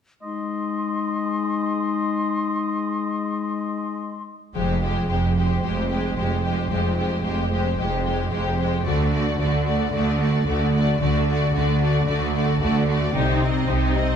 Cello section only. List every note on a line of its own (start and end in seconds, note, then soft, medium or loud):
4.56 5.03 F2 soft
5.10 5.57 F2 soft
5.64 6.11 F2 soft
6.18 6.65 F2 soft
6.72 7.19 F2 soft
7.25 7.72 F2 soft
7.78 8.26 F2 soft
8.32 8.80 F2 soft
8.86 9.34 D3 soft
9.40 9.87 D3 soft
9.93 10.40 D3 soft
10.47 10.94 D3 soft
11.00 11.48 D3 medium
11.54 12.01 D3 soft
12.08 12.55 D3 soft
12.62 13.08 D3 medium
13.15 13.62 C3 medium
13.68 14.15 C3 medium